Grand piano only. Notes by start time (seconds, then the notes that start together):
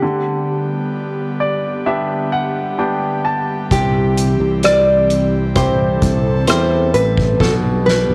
0.02 D3
1.40 D5
1.86 B3 D4 G4 E5
2.32 F#5
2.78 B3 D4 G4 G5
3.25 A5
3.71 C3
5.55 C4 E4 G4
6.48 C4 E4 G4
7.40 B2